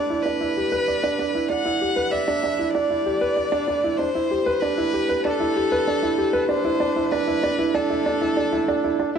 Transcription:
Already playing: upright piano D4 E4 G4 B4 D5, violin D5
0.10 upright piano E4
0.22 upright piano D4, violin B4
0.41 upright piano E4
0.57 upright piano G4
0.72 upright piano B4
0.88 upright piano D5
1.04 upright piano D4
1.19 upright piano D4
1.35 upright piano E4
1.49 upright piano D4, violin F#5
1.65 upright piano E4
1.81 upright piano G4
1.96 upright piano B4
2.11 upright piano D5, violin E5
2.28 upright piano D4
2.44 upright piano D4
2.59 upright piano E4
2.73 upright piano D4, violin D5
2.90 upright piano E4
3.06 upright piano G4
3.21 upright piano B4
3.37 upright piano D5
3.52 upright piano D4
3.68 upright piano D4
3.84 upright piano E4
3.98 upright piano D4, violin C5
4.15 upright piano E4
4.31 upright piano G4
4.46 upright piano B4
4.60 upright piano D4, violin B4
4.78 upright piano E4
4.94 upright piano G4
5.09 upright piano B4
5.24 upright piano D4, violin A4
5.40 upright piano E4
5.56 upright piano G4
5.72 upright piano B4
5.88 upright piano D4
6.03 upright piano E4
6.18 upright piano G4
6.33 upright piano B4
6.49 upright piano D4, violin C5
6.65 upright piano E4
6.80 upright piano D4
6.96 upright piano E4
7.11 upright piano D4, violin B4
7.27 upright piano E4
7.43 upright piano D4
7.59 upright piano E4
7.74 upright piano D4, violin A4
7.90 upright piano E4
8.06 upright piano D4
8.21 upright piano E4
8.37 upright piano D4
8.52 upright piano E4
8.68 upright piano D4
8.84 upright piano E4
8.99 upright piano D4
9.15 upright piano E4

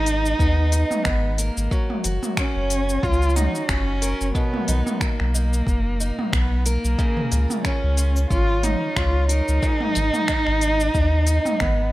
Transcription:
Already playing: sub bass G#1, steel-string acoustic guitar G#3 B3, cello D#4
0.06 steel-string acoustic guitar D#4, open hi-hat, shaker
0.26 shaker
0.39 sub bass D#2, steel-string acoustic guitar B3, kick, shaker
0.72 steel-string acoustic guitar D#4, open hi-hat, shaker
0.91 mid tom, shaker
1.05 sub bass G#1, cello B3, finger snap, kick, shaker
1.38 cello A#3, steel-string acoustic guitar A#4, open hi-hat, shaker
1.57 sub bass G#1, shaker
1.71 steel-string acoustic guitar F#3, kick, shaker
1.90 mid tom
2.04 sub bass F#1, steel-string acoustic guitar F#4, open hi-hat, shaker
2.23 mid tom, shaker
2.37 steel-string acoustic guitar C#4, cello C#4, finger snap, kick, shaker
2.56 sub bass F#1
2.70 open hi-hat, shaker
2.89 shaker
3.03 sub bass C#2, steel-string acoustic guitar C#4, cello F4, kick, shaker
3.13 shaker
3.22 shaker
3.30 shaker
3.35 cello D#4, steel-string acoustic guitar F#4, mid tom, open hi-hat, shaker
3.55 shaker
3.69 sub bass F#1, cello C#4, steel-string acoustic guitar C#4, finger snap, kick, shaker
4.02 steel-string acoustic guitar A#4, open hi-hat, shaker
4.21 sub bass F#1, shaker
4.35 steel-string acoustic guitar B2, cello B3, kick, shaker
4.54 mid tom
4.68 sub bass B1, steel-string acoustic guitar D#4, open hi-hat, shaker
4.87 mid tom, shaker
5.01 cello A#3, finger snap, kick, shaker
5.20 sub bass B1, finger snap
5.34 steel-string acoustic guitar D#4, shaker
5.53 shaker
5.67 sub bass F#1, kick, shaker
6.00 steel-string acoustic guitar D#4, shaker
6.19 mid tom
6.33 sub bass B1, cello B3, finger snap, kick, shaker
6.66 cello A#3, steel-string acoustic guitar A#4, open hi-hat, shaker
6.85 sub bass B1, shaker
6.99 steel-string acoustic guitar C#3, kick, shaker
7.17 mid tom
7.32 sub bass C#2, steel-string acoustic guitar F4, open hi-hat, shaker
7.50 mid tom, shaker
7.64 cello C#4, steel-string acoustic guitar C#4, finger snap, kick, shaker
7.84 sub bass C#2
7.97 steel-string acoustic guitar F4, open hi-hat, shaker
8.16 shaker
8.30 sub bass G#1, steel-string acoustic guitar C#4, cello F4, kick, shaker
8.63 cello D#4, steel-string acoustic guitar F4, mid tom, open hi-hat, shaker
8.96 sub bass C#2, steel-string acoustic guitar C#4, cello F4, finger snap, kick, shaker
9.29 cello D#4, steel-string acoustic guitar A#4, open hi-hat, shaker
9.48 sub bass C#2, shaker
9.62 steel-string acoustic guitar G#2, kick, shaker
9.81 mid tom
9.95 sub bass G#1, steel-string acoustic guitar D#4, open hi-hat, shaker
10.14 mid tom, shaker
10.28 steel-string acoustic guitar B3, finger snap, kick, shaker
10.47 sub bass G#1, finger snap
10.61 steel-string acoustic guitar D#4, open hi-hat, shaker
10.80 shaker
10.94 sub bass D#2, steel-string acoustic guitar B3, kick, shaker
11.27 steel-string acoustic guitar D#4, open hi-hat, shaker
11.45 mid tom, shaker
11.60 sub bass G#1, cello B3, finger snap, kick, shaker

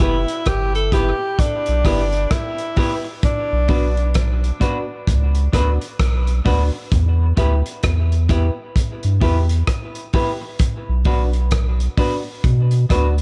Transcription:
Already playing: tenor saxophone E4
0.00 sub bass F#1, clean electric guitar B3 E4 G4 B4, upright piano E4 G4 B4, kick, closed hi-hat
0.28 closed hi-hat
0.46 sub bass G1, tenor saxophone G4, kick, cross-stick, closed hi-hat
0.75 tenor saxophone A4, closed hi-hat
0.92 clean electric guitar B3 E4 G4 B4, upright piano E4 G4 B4, tenor saxophone G4, kick, closed hi-hat
1.39 tenor saxophone D4, kick, closed hi-hat
1.66 sub bass B1, closed hi-hat
1.84 sub bass G1, clean electric guitar B3 E4 G4 B4, upright piano E4 G4 B4, kick, cross-stick, open hi-hat
2.12 closed hi-hat
2.31 tenor saxophone E4, kick, cross-stick, closed hi-hat
2.58 closed hi-hat
2.76 clean electric guitar B3 E4 G4 B4, upright piano E4 G4 B4, kick, open hi-hat
3.04 muted clean electric guitar stroke
3.23 tenor saxophone D4, kick, closed hi-hat
3.52 sub bass B1
3.68 sub bass B1, clean electric guitar B3 D4 F#4 B4, upright piano D4 F#4 B4, kick, open hi-hat
3.97 closed hi-hat
4.14 kick, cross-stick, closed hi-hat
4.44 closed hi-hat
4.60 clean electric guitar B3 D4 F#4 B4, upright piano D4 F#4 B4, kick, closed hi-hat
5.07 sub bass C#2, kick, closed hi-hat
5.35 closed hi-hat
5.53 sub bass D2, clean electric guitar B3 D4 F#4 B4, upright piano D4 F#4 B4, kick, cross-stick, closed hi-hat
5.81 closed hi-hat
5.99 sub bass B1, kick, cross-stick, closed hi-hat
6.27 closed hi-hat
6.45 sub bass D2, clean electric guitar B3 D4 F#4 B4, upright piano D4 F#4 B4, kick, open hi-hat
6.73 muted clean electric guitar stroke
6.92 sub bass E2, kick, closed hi-hat
7.37 sub bass D2, clean electric guitar B3 E4 G4 B4, upright piano E4 G4 B4, kick, closed hi-hat
7.66 closed hi-hat
7.83 sub bass E2, kick, cross-stick, closed hi-hat
8.12 closed hi-hat
8.29 clean electric guitar B3 E4 G4 B4, upright piano E4 G4 B4, kick, closed hi-hat
8.76 kick, closed hi-hat
9.03 sub bass G2, closed hi-hat
9.21 sub bass E2, clean electric guitar B3 E4 G4 B4, upright piano E4 G4 B4, kick, open hi-hat
9.49 closed hi-hat
9.67 kick, cross-stick, closed hi-hat
9.95 closed hi-hat
10.13 clean electric guitar B3 E4 G4 B4, upright piano E4 G4 B4, kick, open hi-hat
10.42 muted clean electric guitar stroke
10.59 kick, closed hi-hat
10.89 sub bass B1
11.05 sub bass B1, clean electric guitar B3 D4 F#4 B4, upright piano D4 F#4 B4, kick, open hi-hat
11.33 closed hi-hat
11.51 kick, cross-stick, closed hi-hat
11.80 closed hi-hat
11.97 clean electric guitar B3 D4 F#4 B4, upright piano D4 F#4 B4, kick, open hi-hat
12.44 sub bass B2, kick, closed hi-hat
12.71 closed hi-hat
12.89 sub bass D2, clean electric guitar B3 D4 F#4 B4, upright piano D4 F#4 B4, kick, cross-stick, closed hi-hat
13.18 closed hi-hat

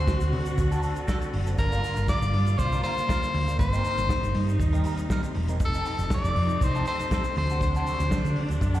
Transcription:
Already playing: string section D3 A3 C4 F#4, tenor saxophone C5
0.08 muted clean electric guitar stroke, kick, snare, shaker
0.20 fingered electric bass D2, muted clean electric guitar stroke, closed hi-hat, shaker
0.32 fingered electric bass D3, open hi-hat
0.46 muted clean electric guitar stroke, closed hi-hat, shaker
0.58 fingered electric bass D2, muted clean electric guitar stroke, kick, closed hi-hat, shaker
0.71 clean electric guitar C4 F#4 A4, closed hi-hat, shaker
0.83 clean electric guitar C4 F#4 A4, open hi-hat, shaker
0.96 muted clean electric guitar stroke, closed hi-hat, shaker
1.07 clean electric guitar C4 F#4 A4, kick, snare, shaker
1.21 muted clean electric guitar stroke, closed hi-hat, shaker
1.33 fingered electric bass F#1, muted clean electric guitar stroke, open hi-hat
1.46 clean electric guitar C4 F#4 A4, closed hi-hat, shaker
1.58 fingered electric bass G1, string section G3 A#3 F4, tenor saxophone A#4, muted clean electric guitar stroke, kick, closed hi-hat, shaker
1.72 clean electric guitar D4 F4 A#4, closed hi-hat, shaker
1.83 clean electric guitar D4 F4 A#4, open hi-hat, shaker
1.96 fingered electric bass G1, muted clean electric guitar stroke, closed hi-hat, shaker
2.08 tenor saxophone D5, muted clean electric guitar stroke, kick, snare, shaker
2.22 fingered electric bass G1, muted clean electric guitar stroke, closed hi-hat, shaker
2.34 fingered electric bass G2, open hi-hat
2.46 muted clean electric guitar stroke, closed hi-hat, shaker
2.58 fingered electric bass C2, tenor saxophone C5, muted clean electric guitar stroke, kick, closed hi-hat, shaker
2.72 clean electric guitar D4 F4 A#4, closed hi-hat, shaker
2.83 clean electric guitar D4 F4 A#4, tenor saxophone C5, open hi-hat, shaker
2.97 muted clean electric guitar stroke, closed hi-hat, shaker
3.09 clean electric guitar D4 F4 A#4, kick, snare, shaker
3.22 muted clean electric guitar stroke, closed hi-hat, shaker
3.34 fingered electric bass D2, muted clean electric guitar stroke, open hi-hat
3.47 clean electric guitar D4 F4 A#4, closed hi-hat, shaker
3.59 fingered electric bass G1, string section C3 G3 D#4, tenor saxophone C5, muted clean electric guitar stroke, kick, closed hi-hat, shaker
3.72 clean electric guitar C4 D#4 A#4, closed hi-hat, shaker
3.84 clean electric guitar C4 D#4 A#4, open hi-hat, shaker
3.98 fingered electric bass G1, muted clean electric guitar stroke, closed hi-hat, shaker
4.09 muted clean electric guitar stroke, kick, snare, shaker
4.23 fingered electric bass G1, muted clean electric guitar stroke, closed hi-hat, shaker
4.35 fingered electric bass G2, open hi-hat
4.47 muted clean electric guitar stroke, closed hi-hat, shaker
4.60 fingered electric bass D#2, muted clean electric guitar stroke, kick, closed hi-hat, shaker
4.73 clean electric guitar C4 D#4 A#4, closed hi-hat, shaker
4.84 clean electric guitar C4 D#4 A#4, open hi-hat, shaker
4.97 muted clean electric guitar stroke, closed hi-hat, shaker
5.10 clean electric guitar C4 D#4 A#4, kick, snare, shaker
5.23 muted clean electric guitar stroke, closed hi-hat, shaker
5.34 fingered electric bass E1, muted clean electric guitar stroke, open hi-hat
5.48 clean electric guitar C4 D#4 A#4, closed hi-hat, shaker
5.60 fingered electric bass F1, string section F3 A3 D#4, muted clean electric guitar stroke, kick, closed hi-hat, shaker
5.65 tenor saxophone A4
5.73 clean electric guitar C4 D#4 A4, closed hi-hat, shaker
5.85 clean electric guitar C4 D#4 A4, open hi-hat, shaker
5.99 fingered electric bass F1, muted clean electric guitar stroke, closed hi-hat, shaker
6.10 tenor saxophone D5, muted clean electric guitar stroke, kick, snare, shaker
6.24 fingered electric bass F1, muted clean electric guitar stroke, closed hi-hat, shaker
6.36 fingered electric bass F2, open hi-hat
6.49 muted clean electric guitar stroke, closed hi-hat, shaker
6.61 fingered electric bass C2, tenor saxophone C5, muted clean electric guitar stroke, kick, closed hi-hat, shaker
6.75 clean electric guitar C4 D#4 A4, closed hi-hat, shaker
6.85 clean electric guitar C4 D#4 A4, tenor saxophone C5, open hi-hat, shaker
6.99 muted clean electric guitar stroke, closed hi-hat, shaker
7.11 clean electric guitar C4 D#4 A4, kick, snare, shaker
7.24 muted clean electric guitar stroke, closed hi-hat, shaker
7.36 fingered electric bass D2, string section F#3 D4, tenor saxophone C5, muted clean electric guitar stroke, open hi-hat
7.49 clean electric guitar C4 F#4 A4, closed hi-hat, shaker
7.61 tenor saxophone C5, muted clean electric guitar stroke, kick, closed hi-hat, shaker
7.75 clean electric guitar C4 F#4 A4, closed hi-hat, shaker
7.86 clean electric guitar C4 F#4 A4, open hi-hat, shaker
8.00 fingered electric bass D2, muted clean electric guitar stroke, closed hi-hat, shaker
8.11 muted clean electric guitar stroke, kick, snare, shaker
8.25 fingered electric bass D3, muted clean electric guitar stroke, closed hi-hat, shaker
8.36 open hi-hat
8.48 fingered electric bass D2, muted clean electric guitar stroke, closed hi-hat, shaker
8.61 fingered electric bass F#2, muted clean electric guitar stroke, kick, closed hi-hat, shaker
8.74 clean electric guitar C4 F#4 A4, closed hi-hat, shaker

